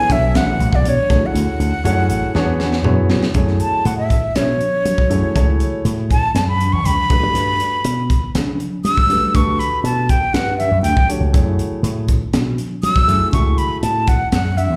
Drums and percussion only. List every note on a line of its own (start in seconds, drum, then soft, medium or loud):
0.10 kick loud
0.10 closed hi-hat medium
0.35 snare loud
0.35 closed hi-hat medium
0.35 muted conga soft
0.35 high conga medium
0.60 closed hi-hat soft
0.60 muted conga soft
0.73 kick medium
0.85 closed hi-hat medium
0.85 high conga medium
1.10 kick medium
1.10 snare soft
1.10 closed hi-hat medium
1.35 closed hi-hat medium
1.35 muted conga soft
1.60 closed hi-hat medium
1.85 closed hi-hat medium
1.85 high conga medium
2.10 closed hi-hat medium
2.35 snare medium
2.60 snare medium
2.60 muted conga soft
2.60 high conga medium
2.73 snare medium
2.84 mid tom medium
2.84 high conga medium
3.10 snare medium
3.10 muted conga soft
3.10 low conga medium
3.23 snare medium
3.34 kick medium
3.34 closed hi-hat medium
3.34 muted conga soft
3.48 snare soft
3.60 closed hi-hat medium
3.60 muted conga soft
3.85 closed hi-hat medium
4.10 kick medium
4.10 closed hi-hat medium
4.36 snare loud
4.36 closed hi-hat medium
4.36 muted conga soft
4.36 high conga medium
4.61 closed hi-hat soft
4.85 closed hi-hat medium
4.85 high conga medium
4.98 kick medium
5.11 closed hi-hat medium
5.11 muted conga soft
5.11 high conga medium
5.36 kick medium
5.36 closed hi-hat medium
5.36 muted conga soft
5.60 closed hi-hat medium
5.60 muted conga soft
5.85 closed hi-hat medium
6.11 kick medium
6.11 closed hi-hat medium
6.36 snare loud
6.36 closed hi-hat medium
6.61 closed hi-hat medium
6.61 high conga medium
6.85 closed hi-hat medium
6.85 high conga medium
7.10 kick loud
7.10 closed hi-hat medium
7.10 muted conga soft
7.35 closed hi-hat medium
7.35 muted conga soft
7.60 closed hi-hat medium
7.60 muted conga soft
7.84 closed hi-hat medium
8.10 kick medium
8.10 closed hi-hat medium
8.35 snare loud
8.35 closed hi-hat medium
8.35 muted conga soft
8.35 high conga medium
8.60 closed hi-hat soft
8.85 closed hi-hat medium
8.85 high conga medium
8.97 kick medium
9.10 closed hi-hat medium
9.10 muted conga soft
9.10 high conga medium
9.35 kick loud
9.35 closed hi-hat medium
9.35 muted conga soft
9.60 closed hi-hat medium
9.60 muted conga soft
9.85 closed hi-hat medium
10.09 kick medium
10.09 closed hi-hat medium
10.34 snare loud
10.34 closed hi-hat medium
10.34 muted conga soft
10.60 closed hi-hat medium
10.60 high conga medium
10.84 closed hi-hat medium
10.84 high conga medium
10.97 kick medium
11.10 closed hi-hat medium
11.10 muted conga soft
11.34 kick loud
11.34 closed hi-hat medium
11.34 muted conga soft
11.59 closed hi-hat medium
11.59 muted conga soft
11.84 closed hi-hat medium
12.08 kick medium
12.08 closed hi-hat medium
12.33 snare loud
12.33 closed hi-hat medium
12.33 muted conga soft
12.33 high conga medium
12.58 closed hi-hat medium
12.83 closed hi-hat medium
12.83 high conga medium
12.96 kick medium
13.09 closed hi-hat medium
13.09 muted conga soft
13.09 high conga medium
13.33 kick loud
13.33 closed hi-hat medium
13.33 muted conga soft
13.58 closed hi-hat medium
13.58 muted conga soft
13.83 closed hi-hat medium
14.07 kick medium
14.07 closed hi-hat medium
14.32 snare loud
14.32 closed hi-hat medium
14.58 closed hi-hat soft
14.58 high conga medium